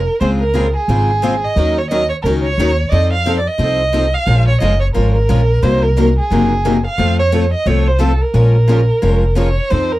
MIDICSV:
0, 0, Header, 1, 4, 480
1, 0, Start_track
1, 0, Key_signature, -5, "minor"
1, 0, Tempo, 338983
1, 302, Time_signature, 4, 2, 24, 8
1, 14150, End_track
2, 0, Start_track
2, 0, Title_t, "Violin"
2, 0, Program_c, 0, 40
2, 0, Note_on_c, 0, 70, 92
2, 256, Note_off_c, 0, 70, 0
2, 291, Note_on_c, 0, 72, 88
2, 424, Note_off_c, 0, 72, 0
2, 566, Note_on_c, 0, 70, 87
2, 1024, Note_off_c, 0, 70, 0
2, 1076, Note_on_c, 0, 68, 84
2, 2042, Note_on_c, 0, 75, 84
2, 2063, Note_off_c, 0, 68, 0
2, 2522, Note_on_c, 0, 73, 80
2, 2543, Note_off_c, 0, 75, 0
2, 2688, Note_off_c, 0, 73, 0
2, 2697, Note_on_c, 0, 75, 90
2, 2957, Note_off_c, 0, 75, 0
2, 2965, Note_on_c, 0, 73, 82
2, 3056, Note_off_c, 0, 73, 0
2, 3149, Note_on_c, 0, 70, 83
2, 3286, Note_off_c, 0, 70, 0
2, 3436, Note_on_c, 0, 73, 91
2, 4085, Note_on_c, 0, 74, 68
2, 4106, Note_off_c, 0, 73, 0
2, 4123, Note_on_c, 0, 75, 92
2, 4144, Note_off_c, 0, 74, 0
2, 4418, Note_off_c, 0, 75, 0
2, 4427, Note_on_c, 0, 77, 98
2, 4762, Note_off_c, 0, 77, 0
2, 4797, Note_on_c, 0, 74, 70
2, 4921, Note_on_c, 0, 75, 95
2, 4942, Note_off_c, 0, 74, 0
2, 5869, Note_on_c, 0, 77, 87
2, 5890, Note_off_c, 0, 75, 0
2, 6331, Note_off_c, 0, 77, 0
2, 6340, Note_on_c, 0, 73, 84
2, 6521, Note_off_c, 0, 73, 0
2, 6527, Note_on_c, 0, 75, 78
2, 6794, Note_off_c, 0, 75, 0
2, 6802, Note_on_c, 0, 73, 79
2, 6894, Note_off_c, 0, 73, 0
2, 6998, Note_on_c, 0, 70, 80
2, 7272, Note_off_c, 0, 70, 0
2, 7280, Note_on_c, 0, 70, 87
2, 7970, Note_on_c, 0, 72, 90
2, 7991, Note_off_c, 0, 70, 0
2, 8252, Note_on_c, 0, 70, 82
2, 8273, Note_off_c, 0, 72, 0
2, 8741, Note_off_c, 0, 70, 0
2, 8762, Note_on_c, 0, 68, 79
2, 9660, Note_off_c, 0, 68, 0
2, 9718, Note_on_c, 0, 77, 90
2, 10162, Note_off_c, 0, 77, 0
2, 10176, Note_on_c, 0, 73, 85
2, 10629, Note_off_c, 0, 73, 0
2, 10667, Note_on_c, 0, 75, 83
2, 10858, Note_on_c, 0, 73, 79
2, 10879, Note_off_c, 0, 75, 0
2, 11146, Note_on_c, 0, 72, 80
2, 11168, Note_off_c, 0, 73, 0
2, 11332, Note_on_c, 0, 69, 78
2, 11353, Note_off_c, 0, 72, 0
2, 11635, Note_on_c, 0, 70, 76
2, 11656, Note_off_c, 0, 69, 0
2, 13262, Note_off_c, 0, 70, 0
2, 13292, Note_on_c, 0, 73, 82
2, 13740, Note_on_c, 0, 72, 90
2, 13761, Note_off_c, 0, 73, 0
2, 14046, Note_on_c, 0, 70, 81
2, 14067, Note_off_c, 0, 72, 0
2, 14150, Note_off_c, 0, 70, 0
2, 14150, End_track
3, 0, Start_track
3, 0, Title_t, "Steel-string acoustic guitar"
3, 0, Program_c, 1, 25
3, 291, Note_on_c, 1, 49, 63
3, 305, Note_on_c, 1, 56, 61
3, 307, Note_on_c, 1, 60, 63
3, 308, Note_on_c, 1, 65, 69
3, 315, Note_on_c, 1, 68, 67
3, 589, Note_off_c, 1, 49, 0
3, 595, Note_off_c, 1, 56, 0
3, 597, Note_off_c, 1, 60, 0
3, 597, Note_off_c, 1, 65, 0
3, 600, Note_off_c, 1, 68, 0
3, 760, Note_on_c, 1, 49, 77
3, 765, Note_on_c, 1, 56, 69
3, 776, Note_on_c, 1, 60, 73
3, 777, Note_on_c, 1, 65, 77
3, 782, Note_on_c, 1, 68, 84
3, 926, Note_off_c, 1, 49, 0
3, 928, Note_off_c, 1, 56, 0
3, 934, Note_off_c, 1, 60, 0
3, 934, Note_off_c, 1, 65, 0
3, 937, Note_off_c, 1, 68, 0
3, 1257, Note_on_c, 1, 49, 62
3, 1259, Note_on_c, 1, 60, 72
3, 1266, Note_on_c, 1, 56, 59
3, 1267, Note_on_c, 1, 65, 61
3, 1269, Note_on_c, 1, 68, 65
3, 1551, Note_off_c, 1, 49, 0
3, 1552, Note_off_c, 1, 60, 0
3, 1556, Note_off_c, 1, 56, 0
3, 1556, Note_off_c, 1, 65, 0
3, 1557, Note_off_c, 1, 68, 0
3, 1730, Note_on_c, 1, 49, 74
3, 1741, Note_on_c, 1, 56, 77
3, 1749, Note_on_c, 1, 60, 85
3, 1750, Note_on_c, 1, 65, 86
3, 1756, Note_on_c, 1, 68, 88
3, 1890, Note_off_c, 1, 49, 0
3, 1896, Note_off_c, 1, 56, 0
3, 1900, Note_off_c, 1, 60, 0
3, 1900, Note_off_c, 1, 65, 0
3, 1904, Note_off_c, 1, 68, 0
3, 2217, Note_on_c, 1, 51, 62
3, 2225, Note_on_c, 1, 54, 63
3, 2232, Note_on_c, 1, 61, 70
3, 2241, Note_on_c, 1, 63, 63
3, 2247, Note_on_c, 1, 70, 65
3, 2511, Note_off_c, 1, 51, 0
3, 2515, Note_off_c, 1, 54, 0
3, 2518, Note_off_c, 1, 61, 0
3, 2523, Note_off_c, 1, 63, 0
3, 2526, Note_off_c, 1, 70, 0
3, 2704, Note_on_c, 1, 51, 73
3, 2707, Note_on_c, 1, 54, 72
3, 2713, Note_on_c, 1, 70, 77
3, 2716, Note_on_c, 1, 61, 83
3, 2716, Note_on_c, 1, 63, 77
3, 2857, Note_off_c, 1, 51, 0
3, 2859, Note_off_c, 1, 54, 0
3, 2862, Note_off_c, 1, 70, 0
3, 2863, Note_off_c, 1, 61, 0
3, 2863, Note_off_c, 1, 63, 0
3, 3189, Note_on_c, 1, 51, 58
3, 3197, Note_on_c, 1, 61, 67
3, 3201, Note_on_c, 1, 54, 66
3, 3202, Note_on_c, 1, 70, 69
3, 3206, Note_on_c, 1, 63, 71
3, 3477, Note_off_c, 1, 51, 0
3, 3481, Note_off_c, 1, 61, 0
3, 3483, Note_off_c, 1, 54, 0
3, 3483, Note_off_c, 1, 70, 0
3, 3485, Note_off_c, 1, 63, 0
3, 3673, Note_on_c, 1, 51, 74
3, 3679, Note_on_c, 1, 54, 83
3, 3682, Note_on_c, 1, 63, 92
3, 3688, Note_on_c, 1, 61, 87
3, 3691, Note_on_c, 1, 70, 92
3, 3822, Note_off_c, 1, 51, 0
3, 3825, Note_off_c, 1, 54, 0
3, 3826, Note_off_c, 1, 63, 0
3, 3829, Note_off_c, 1, 61, 0
3, 3831, Note_off_c, 1, 70, 0
3, 4132, Note_on_c, 1, 53, 57
3, 4137, Note_on_c, 1, 60, 54
3, 4148, Note_on_c, 1, 63, 57
3, 4162, Note_on_c, 1, 69, 65
3, 4428, Note_off_c, 1, 53, 0
3, 4431, Note_off_c, 1, 60, 0
3, 4436, Note_off_c, 1, 63, 0
3, 4443, Note_off_c, 1, 69, 0
3, 4611, Note_on_c, 1, 53, 76
3, 4619, Note_on_c, 1, 60, 80
3, 4620, Note_on_c, 1, 63, 82
3, 4630, Note_on_c, 1, 69, 83
3, 4771, Note_off_c, 1, 53, 0
3, 4774, Note_off_c, 1, 60, 0
3, 4775, Note_off_c, 1, 63, 0
3, 4780, Note_off_c, 1, 69, 0
3, 5069, Note_on_c, 1, 53, 61
3, 5084, Note_on_c, 1, 63, 69
3, 5087, Note_on_c, 1, 60, 70
3, 5093, Note_on_c, 1, 69, 72
3, 5377, Note_off_c, 1, 53, 0
3, 5384, Note_off_c, 1, 63, 0
3, 5386, Note_off_c, 1, 60, 0
3, 5389, Note_off_c, 1, 69, 0
3, 5561, Note_on_c, 1, 53, 77
3, 5566, Note_on_c, 1, 60, 76
3, 5579, Note_on_c, 1, 63, 78
3, 5580, Note_on_c, 1, 69, 92
3, 5725, Note_off_c, 1, 53, 0
3, 5728, Note_off_c, 1, 60, 0
3, 5735, Note_off_c, 1, 63, 0
3, 5735, Note_off_c, 1, 69, 0
3, 6034, Note_on_c, 1, 53, 63
3, 6047, Note_on_c, 1, 56, 58
3, 6048, Note_on_c, 1, 61, 62
3, 6050, Note_on_c, 1, 65, 65
3, 6051, Note_on_c, 1, 70, 65
3, 6339, Note_off_c, 1, 53, 0
3, 6346, Note_off_c, 1, 56, 0
3, 6346, Note_off_c, 1, 61, 0
3, 6347, Note_off_c, 1, 65, 0
3, 6347, Note_off_c, 1, 70, 0
3, 6520, Note_on_c, 1, 53, 80
3, 6532, Note_on_c, 1, 56, 76
3, 6537, Note_on_c, 1, 65, 79
3, 6540, Note_on_c, 1, 61, 76
3, 6546, Note_on_c, 1, 70, 84
3, 6685, Note_off_c, 1, 53, 0
3, 6691, Note_off_c, 1, 56, 0
3, 6693, Note_off_c, 1, 65, 0
3, 6695, Note_off_c, 1, 61, 0
3, 6698, Note_off_c, 1, 70, 0
3, 7000, Note_on_c, 1, 53, 66
3, 7006, Note_on_c, 1, 56, 64
3, 7008, Note_on_c, 1, 65, 66
3, 7014, Note_on_c, 1, 61, 63
3, 7016, Note_on_c, 1, 70, 66
3, 7302, Note_off_c, 1, 53, 0
3, 7305, Note_off_c, 1, 56, 0
3, 7306, Note_off_c, 1, 65, 0
3, 7309, Note_off_c, 1, 61, 0
3, 7310, Note_off_c, 1, 70, 0
3, 7489, Note_on_c, 1, 53, 75
3, 7490, Note_on_c, 1, 56, 76
3, 7491, Note_on_c, 1, 61, 76
3, 7501, Note_on_c, 1, 65, 79
3, 7506, Note_on_c, 1, 70, 80
3, 7650, Note_off_c, 1, 53, 0
3, 7650, Note_off_c, 1, 56, 0
3, 7651, Note_off_c, 1, 61, 0
3, 7656, Note_off_c, 1, 65, 0
3, 7658, Note_off_c, 1, 70, 0
3, 7963, Note_on_c, 1, 48, 59
3, 7970, Note_on_c, 1, 58, 64
3, 7974, Note_on_c, 1, 54, 65
3, 7975, Note_on_c, 1, 63, 64
3, 7978, Note_on_c, 1, 70, 67
3, 8264, Note_off_c, 1, 48, 0
3, 8267, Note_off_c, 1, 58, 0
3, 8269, Note_off_c, 1, 54, 0
3, 8270, Note_off_c, 1, 63, 0
3, 8271, Note_off_c, 1, 70, 0
3, 8448, Note_on_c, 1, 48, 75
3, 8457, Note_on_c, 1, 54, 78
3, 8463, Note_on_c, 1, 70, 92
3, 8464, Note_on_c, 1, 58, 78
3, 8470, Note_on_c, 1, 63, 73
3, 8609, Note_off_c, 1, 48, 0
3, 8614, Note_off_c, 1, 54, 0
3, 8617, Note_off_c, 1, 58, 0
3, 8617, Note_off_c, 1, 70, 0
3, 8620, Note_off_c, 1, 63, 0
3, 8926, Note_on_c, 1, 48, 64
3, 8941, Note_on_c, 1, 54, 70
3, 8944, Note_on_c, 1, 58, 69
3, 8944, Note_on_c, 1, 63, 67
3, 8951, Note_on_c, 1, 70, 70
3, 9225, Note_off_c, 1, 48, 0
3, 9233, Note_off_c, 1, 54, 0
3, 9235, Note_off_c, 1, 58, 0
3, 9235, Note_off_c, 1, 63, 0
3, 9238, Note_off_c, 1, 70, 0
3, 9415, Note_on_c, 1, 48, 72
3, 9416, Note_on_c, 1, 58, 85
3, 9417, Note_on_c, 1, 54, 78
3, 9424, Note_on_c, 1, 63, 83
3, 9428, Note_on_c, 1, 70, 89
3, 9573, Note_off_c, 1, 48, 0
3, 9573, Note_off_c, 1, 58, 0
3, 9574, Note_off_c, 1, 54, 0
3, 9578, Note_off_c, 1, 63, 0
3, 9579, Note_off_c, 1, 70, 0
3, 9883, Note_on_c, 1, 57, 66
3, 9887, Note_on_c, 1, 53, 58
3, 9897, Note_on_c, 1, 69, 66
3, 9903, Note_on_c, 1, 60, 63
3, 9903, Note_on_c, 1, 65, 62
3, 10184, Note_off_c, 1, 57, 0
3, 10186, Note_off_c, 1, 53, 0
3, 10191, Note_off_c, 1, 69, 0
3, 10194, Note_off_c, 1, 60, 0
3, 10194, Note_off_c, 1, 65, 0
3, 10366, Note_on_c, 1, 53, 68
3, 10369, Note_on_c, 1, 57, 79
3, 10369, Note_on_c, 1, 60, 83
3, 10372, Note_on_c, 1, 69, 88
3, 10374, Note_on_c, 1, 65, 80
3, 10529, Note_off_c, 1, 53, 0
3, 10530, Note_off_c, 1, 57, 0
3, 10530, Note_off_c, 1, 60, 0
3, 10531, Note_off_c, 1, 69, 0
3, 10533, Note_off_c, 1, 65, 0
3, 10842, Note_on_c, 1, 53, 63
3, 10848, Note_on_c, 1, 60, 65
3, 10852, Note_on_c, 1, 57, 65
3, 10855, Note_on_c, 1, 65, 61
3, 10869, Note_on_c, 1, 69, 68
3, 11144, Note_off_c, 1, 53, 0
3, 11147, Note_off_c, 1, 60, 0
3, 11149, Note_off_c, 1, 57, 0
3, 11150, Note_off_c, 1, 65, 0
3, 11157, Note_off_c, 1, 69, 0
3, 11308, Note_on_c, 1, 53, 77
3, 11317, Note_on_c, 1, 57, 75
3, 11322, Note_on_c, 1, 60, 83
3, 11332, Note_on_c, 1, 65, 86
3, 11336, Note_on_c, 1, 69, 81
3, 11480, Note_off_c, 1, 53, 0
3, 11484, Note_off_c, 1, 57, 0
3, 11486, Note_off_c, 1, 60, 0
3, 11492, Note_off_c, 1, 65, 0
3, 11494, Note_off_c, 1, 69, 0
3, 11809, Note_on_c, 1, 53, 66
3, 11811, Note_on_c, 1, 61, 68
3, 11818, Note_on_c, 1, 56, 62
3, 11826, Note_on_c, 1, 65, 69
3, 11835, Note_on_c, 1, 70, 67
3, 12107, Note_off_c, 1, 53, 0
3, 12108, Note_off_c, 1, 61, 0
3, 12112, Note_off_c, 1, 56, 0
3, 12116, Note_off_c, 1, 65, 0
3, 12121, Note_off_c, 1, 70, 0
3, 12285, Note_on_c, 1, 53, 77
3, 12292, Note_on_c, 1, 56, 73
3, 12306, Note_on_c, 1, 61, 81
3, 12307, Note_on_c, 1, 70, 75
3, 12308, Note_on_c, 1, 65, 81
3, 12448, Note_off_c, 1, 53, 0
3, 12451, Note_off_c, 1, 56, 0
3, 12459, Note_off_c, 1, 61, 0
3, 12459, Note_off_c, 1, 70, 0
3, 12460, Note_off_c, 1, 65, 0
3, 12772, Note_on_c, 1, 53, 66
3, 12772, Note_on_c, 1, 56, 66
3, 12781, Note_on_c, 1, 61, 67
3, 12783, Note_on_c, 1, 65, 61
3, 12787, Note_on_c, 1, 70, 70
3, 13069, Note_off_c, 1, 53, 0
3, 13069, Note_off_c, 1, 56, 0
3, 13073, Note_off_c, 1, 61, 0
3, 13074, Note_off_c, 1, 65, 0
3, 13076, Note_off_c, 1, 70, 0
3, 13244, Note_on_c, 1, 53, 77
3, 13255, Note_on_c, 1, 61, 80
3, 13260, Note_on_c, 1, 56, 76
3, 13260, Note_on_c, 1, 65, 85
3, 13273, Note_on_c, 1, 70, 85
3, 13407, Note_off_c, 1, 53, 0
3, 13413, Note_off_c, 1, 61, 0
3, 13416, Note_off_c, 1, 56, 0
3, 13416, Note_off_c, 1, 65, 0
3, 13422, Note_off_c, 1, 70, 0
3, 13736, Note_on_c, 1, 53, 55
3, 13742, Note_on_c, 1, 60, 69
3, 13747, Note_on_c, 1, 63, 70
3, 13757, Note_on_c, 1, 69, 66
3, 14030, Note_off_c, 1, 53, 0
3, 14034, Note_off_c, 1, 60, 0
3, 14036, Note_off_c, 1, 63, 0
3, 14041, Note_off_c, 1, 69, 0
3, 14150, End_track
4, 0, Start_track
4, 0, Title_t, "Upright bass"
4, 0, Program_c, 2, 32
4, 298, Note_on_c, 2, 37, 77
4, 1067, Note_off_c, 2, 37, 0
4, 1247, Note_on_c, 2, 32, 76
4, 2020, Note_off_c, 2, 32, 0
4, 2210, Note_on_c, 2, 39, 82
4, 2982, Note_off_c, 2, 39, 0
4, 3168, Note_on_c, 2, 37, 74
4, 3581, Note_off_c, 2, 37, 0
4, 3649, Note_on_c, 2, 39, 75
4, 4062, Note_off_c, 2, 39, 0
4, 4133, Note_on_c, 2, 41, 86
4, 4903, Note_off_c, 2, 41, 0
4, 5079, Note_on_c, 2, 36, 71
4, 5855, Note_off_c, 2, 36, 0
4, 6042, Note_on_c, 2, 34, 79
4, 6433, Note_off_c, 2, 34, 0
4, 6534, Note_on_c, 2, 30, 71
4, 6944, Note_off_c, 2, 30, 0
4, 7030, Note_on_c, 2, 32, 77
4, 7434, Note_off_c, 2, 32, 0
4, 7495, Note_on_c, 2, 34, 77
4, 7905, Note_off_c, 2, 34, 0
4, 7971, Note_on_c, 2, 36, 84
4, 8742, Note_off_c, 2, 36, 0
4, 8933, Note_on_c, 2, 30, 75
4, 9704, Note_off_c, 2, 30, 0
4, 9885, Note_on_c, 2, 41, 86
4, 10659, Note_off_c, 2, 41, 0
4, 10843, Note_on_c, 2, 36, 73
4, 11618, Note_off_c, 2, 36, 0
4, 11806, Note_on_c, 2, 34, 84
4, 12580, Note_off_c, 2, 34, 0
4, 12788, Note_on_c, 2, 29, 73
4, 13553, Note_off_c, 2, 29, 0
4, 13760, Note_on_c, 2, 41, 81
4, 14150, Note_off_c, 2, 41, 0
4, 14150, End_track
0, 0, End_of_file